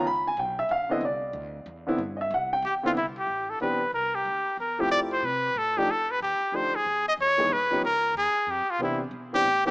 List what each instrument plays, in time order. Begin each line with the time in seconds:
0.05 upright bass C#2, grand piano B5
0.27 grand piano G#5
0.37 upright bass B1, grand piano G5
0.59 grand piano E5
0.69 upright bass A#1, grand piano F5
0.89 grand piano D3 B3 C4 E4 D#5
1.01 upright bass C2
1.05 grand piano D5
1.33 upright bass D2
1.66 upright bass E2
1.87 grand piano D3 B3 C4 E4
1.98 upright bass G2
2.17 grand piano D#5
2.21 grand piano E5
2.31 upright bass C2, grand piano F#5
2.53 grand piano G5
2.62 upright bass E2, trumpet G4
2.83 grand piano D3 B3 C4 E4, trumpet F4
2.95 upright bass C2, trumpet E4
3.18 trumpet G4
3.27 upright bass A1
3.50 trumpet A4
3.60 upright bass B1, grand piano E3 B3 C4 D4 G4, trumpet B4
3.92 upright bass C2, trumpet A#4
4.15 trumpet G4
4.25 upright bass D2
4.46 muted upright bass stroke
4.57 upright bass E2, trumpet A#4
4.79 grand piano F3 A3 C4 E4 G4, trumpet G4
4.90 upright bass F2, trumpet D5
5.12 trumpet C5
5.23 upright bass C3, trumpet B4
5.55 upright bass A2, trumpet A4
5.77 grand piano F3 A3 D4 D#4 G4, trumpet G4
5.87 upright bass F2, trumpet A4
6.11 trumpet B4
6.20 upright bass D#2, trumpet G4
6.41 muted upright bass stroke
6.52 upright bass D2, grand piano F3 A3 D4 D#4 G4, trumpet C5
6.75 trumpet G#4
6.85 upright bass E2
7.08 trumpet D#5
7.18 upright bass D#2, trumpet C#5
7.38 grand piano E3 G#3 B3 D#4 G#4
7.49 upright bass B1, trumpet B4
7.70 grand piano F3 B3 C#4 D#4 G4
7.82 upright bass C#2, trumpet A#4
8.14 upright bass D#2, trumpet G#4
8.35 muted upright bass stroke
8.47 upright bass F2, trumpet G4
8.70 trumpet F4
8.79 upright bass C3, grand piano E3 B3 C4 D4 G4
8.83 trumpet E4
9.11 upright bass B2
9.33 grand piano E3 B3 C4 D4 G4, trumpet G4
9.44 upright bass A2
9.65 grand piano E3 B3 C4 D4 A4, trumpet G4